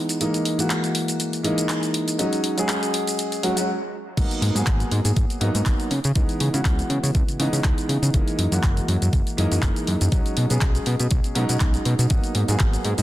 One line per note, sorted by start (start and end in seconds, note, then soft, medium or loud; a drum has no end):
0.00 0.17 E3 medium
0.00 0.18 G#3 medium
0.00 0.18 B3 medium
0.00 0.18 D#4 loud
0.09 closed hi-hat soft
0.09 shaker medium
0.20 0.56 E3 medium
0.20 0.56 G#3 medium
0.20 0.56 A#3 medium
0.20 0.56 D#4 loud
0.20 closed hi-hat medium
0.20 shaker soft
0.34 closed hi-hat soft
0.34 shaker soft
0.45 open hi-hat loud
0.58 1.41 E3 medium
0.58 1.42 G#3 medium
0.58 1.42 A#3 medium
0.58 1.42 F#4 medium
0.58 closed hi-hat soft
0.58 shaker medium
0.70 clap loud
0.70 closed hi-hat medium
0.70 shaker medium
0.84 closed hi-hat soft
0.84 shaker soft
0.95 open hi-hat loud
1.08 closed hi-hat soft
1.08 shaker medium
1.20 closed hi-hat medium
1.20 shaker medium
1.33 closed hi-hat soft
1.33 shaker soft
1.43 2.16 E3 loud
1.43 2.16 G#3 medium
1.43 2.16 A#3 medium
1.43 2.17 D#4 loud
1.43 open hi-hat loud
1.58 closed hi-hat soft
1.58 shaker medium
1.69 clap loud
1.69 closed hi-hat medium
1.69 shaker medium
1.83 closed hi-hat soft
1.83 shaker soft
1.94 open hi-hat loud
2.08 closed hi-hat soft
2.08 shaker medium
2.19 2.54 F#3 medium
2.19 2.54 G#3 medium
2.19 2.54 C#4 medium
2.19 2.54 D#4 loud
2.19 closed hi-hat medium
2.19 shaker medium
2.33 closed hi-hat soft
2.33 shaker soft
2.44 open hi-hat loud
2.57 3.40 F#3 medium
2.57 3.40 G#3 medium
2.57 3.41 C#4 medium
2.57 3.41 G#4 loud
2.57 closed hi-hat soft
2.57 shaker medium
2.69 clap loud
2.69 closed hi-hat medium
2.69 shaker medium
2.83 closed hi-hat soft
2.83 shaker soft
2.94 open hi-hat loud
3.08 closed hi-hat soft
3.08 shaker medium
3.19 closed hi-hat medium
3.19 shaker medium
3.32 closed hi-hat soft
3.32 shaker soft
3.43 3.53 F#3 medium
3.43 3.53 G#3 medium
3.43 3.54 C#4 medium
3.43 3.54 F#4 loud
3.43 open hi-hat loud
3.56 3.67 F#3 medium
3.56 3.68 G#3 medium
3.56 3.68 C#4 medium
3.56 3.68 F#4 loud
3.56 closed hi-hat soft
3.56 shaker medium
4.17 4.26 G#1 loud
4.17 4.52 F#3 medium
4.17 4.52 A#3 medium
4.17 4.53 B3 medium
4.17 4.53 D#4 loud
4.17 kick loud
4.17 closed hi-hat loud
4.17 crash loud
4.17 shaker medium
4.31 closed hi-hat soft
4.31 shaker soft
4.42 4.51 G#2 medium
4.42 open hi-hat loud
4.55 4.63 G#2 loud
4.55 5.38 F#3 medium
4.55 5.38 A#3 medium
4.55 5.39 B3 medium
4.55 5.39 G#4 medium
4.55 closed hi-hat soft
4.55 shaker medium
4.67 4.84 G#1 medium
4.67 kick loud
4.67 clap loud
4.67 closed hi-hat loud
4.67 shaker medium
4.80 closed hi-hat soft
4.80 shaker soft
4.91 5.00 G#2 loud
4.91 open hi-hat loud
5.05 5.12 G#2 loud
5.05 closed hi-hat soft
5.05 shaker medium
5.16 5.25 G#1 loud
5.16 kick loud
5.16 closed hi-hat loud
5.16 shaker medium
5.30 closed hi-hat soft
5.30 shaker soft
5.41 5.50 G#2 loud
5.41 5.89 F#3 loud
5.41 5.89 A#3 medium
5.41 5.89 B3 medium
5.41 5.90 D#4 loud
5.41 open hi-hat loud
5.55 5.62 G#2 medium
5.55 closed hi-hat soft
5.55 shaker medium
5.66 5.75 G#1 medium
5.66 kick loud
5.66 clap loud
5.66 closed hi-hat medium
5.66 shaker medium
5.80 closed hi-hat soft
5.80 shaker soft
5.91 6.00 C#3 medium
5.91 open hi-hat loud
6.04 6.12 C#3 loud
6.04 closed hi-hat soft
6.04 shaker medium
6.15 6.24 C#2 loud
6.15 6.50 E3 medium
6.15 6.51 G#3 medium
6.15 6.51 B3 medium
6.15 6.51 D#4 loud
6.15 kick loud
6.15 closed hi-hat medium
6.15 shaker medium
6.29 closed hi-hat soft
6.29 shaker soft
6.40 6.49 C#3 medium
6.40 open hi-hat loud
6.53 6.61 C#3 medium
6.53 7.36 E3 medium
6.53 7.37 G#3 medium
6.53 7.37 B3 medium
6.53 7.37 F#4 loud
6.53 closed hi-hat soft
6.53 shaker medium
6.65 6.82 C#2 medium
6.65 kick loud
6.65 clap loud
6.65 closed hi-hat medium
6.65 shaker medium
6.79 closed hi-hat soft
6.79 shaker soft
6.90 6.99 C#3 loud
6.90 open hi-hat loud
7.03 7.11 C#3 loud
7.03 closed hi-hat soft
7.03 shaker medium
7.15 7.24 C#2 loud
7.15 kick loud
7.15 closed hi-hat medium
7.15 shaker medium
7.28 7.37 C#3 soft
7.28 closed hi-hat soft
7.28 shaker soft
7.39 7.48 C#3 medium
7.39 8.11 E3 loud
7.39 8.12 G#3 medium
7.39 8.12 B3 medium
7.39 8.12 D#4 loud
7.39 open hi-hat loud
7.53 7.60 C#3 medium
7.53 closed hi-hat soft
7.53 shaker medium
7.64 7.73 C#2 medium
7.64 kick loud
7.64 clap loud
7.64 closed hi-hat loud
7.64 shaker medium
7.78 closed hi-hat soft
7.78 shaker soft
7.89 7.98 C#3 medium
7.89 open hi-hat loud
8.02 8.10 C#3 loud
8.02 closed hi-hat soft
8.02 shaker medium
8.14 8.23 F#1 loud
8.14 8.49 E3 medium
8.14 8.49 G#3 medium
8.14 8.49 A#3 medium
8.14 8.50 D#4 loud
8.14 kick loud
8.14 closed hi-hat medium
8.14 shaker medium
8.28 closed hi-hat soft
8.28 shaker soft
8.39 8.47 F#2 medium
8.39 open hi-hat loud
8.52 8.59 F#2 loud
8.52 9.35 E3 medium
8.52 9.35 G#3 medium
8.52 9.36 A#3 medium
8.52 9.36 F#4 loud
8.52 closed hi-hat soft
8.52 shaker medium
8.63 8.80 F#1 loud
8.63 kick loud
8.63 clap loud
8.63 closed hi-hat medium
8.63 shaker medium
8.77 closed hi-hat soft
8.77 shaker soft
8.88 8.97 F#2 loud
8.88 open hi-hat loud
9.02 9.09 F#2 loud
9.02 closed hi-hat soft
9.02 shaker medium
9.13 9.22 F#1 loud
9.13 kick loud
9.13 closed hi-hat medium
9.13 shaker medium
9.27 closed hi-hat soft
9.27 shaker soft
9.37 9.47 F#2 loud
9.37 10.09 E3 loud
9.37 10.10 G#3 medium
9.37 10.10 A#3 medium
9.37 10.10 D#4 loud
9.37 open hi-hat loud
9.52 9.59 F#2 medium
9.52 closed hi-hat soft
9.52 shaker medium
9.62 9.71 F#1 medium
9.62 kick loud
9.62 clap loud
9.62 closed hi-hat medium
9.62 shaker medium
9.76 closed hi-hat soft
9.76 shaker soft
9.87 9.97 F#2 medium
9.87 open hi-hat loud
10.01 10.09 F#2 loud
10.01 closed hi-hat soft
10.01 shaker medium
10.12 10.21 B1 loud
10.12 10.47 F#3 medium
10.12 10.47 G#3 medium
10.12 10.47 C#4 medium
10.12 10.48 D#4 loud
10.12 kick loud
10.12 closed hi-hat medium
10.12 shaker medium
10.26 closed hi-hat soft
10.26 shaker soft
10.37 10.46 B2 medium
10.37 open hi-hat loud
10.49 10.58 B2 medium
10.49 11.33 F#3 medium
10.49 11.33 G#3 medium
10.49 11.34 C#4 medium
10.49 11.34 G#4 medium
10.49 closed hi-hat soft
10.49 shaker medium
10.61 10.79 B1 medium
10.61 kick loud
10.61 clap loud
10.61 closed hi-hat medium
10.61 shaker medium
10.75 closed hi-hat soft
10.75 shaker soft
10.86 10.95 B2 loud
10.86 open hi-hat loud
11.00 11.07 B2 medium
11.00 closed hi-hat soft
11.00 shaker medium
11.11 11.20 B1 loud
11.11 kick loud
11.11 closed hi-hat medium
11.11 shaker medium
11.24 11.34 B2 soft
11.24 closed hi-hat soft
11.24 shaker soft
11.35 11.45 B2 loud
11.35 12.07 F#3 loud
11.35 12.08 G#3 medium
11.35 12.08 C#4 medium
11.35 12.08 D#4 loud
11.35 open hi-hat loud
11.49 11.57 B2 medium
11.49 closed hi-hat soft
11.49 shaker medium
11.60 11.78 B1 medium
11.60 kick loud
11.60 clap loud
11.60 closed hi-hat medium
11.60 shaker medium
11.74 closed hi-hat soft
11.74 shaker soft
11.85 11.95 B2 medium
11.85 open hi-hat loud
11.99 12.06 B2 medium
11.99 closed hi-hat soft
11.99 shaker medium
12.10 12.19 G#1 loud
12.10 12.45 F#3 medium
12.10 12.46 A#3 medium
12.10 12.46 B3 medium
12.10 12.46 D#4 loud
12.10 kick loud
12.10 closed hi-hat medium
12.10 shaker medium
12.24 closed hi-hat soft
12.24 shaker soft
12.35 12.44 G#2 medium
12.35 open hi-hat loud
12.48 12.56 G#2 loud
12.48 13.02 F#3 medium
12.48 13.02 A#3 medium
12.48 13.02 B3 medium
12.48 13.02 G#4 loud
12.48 closed hi-hat soft
12.48 shaker medium
12.59 12.77 G#1 loud
12.59 kick loud
12.59 clap loud
12.59 closed hi-hat medium
12.59 shaker medium
12.73 closed hi-hat soft
12.73 shaker soft
12.85 12.94 G#2 loud
12.85 open hi-hat loud
12.98 13.02 G#2 loud
12.98 closed hi-hat soft
12.98 shaker medium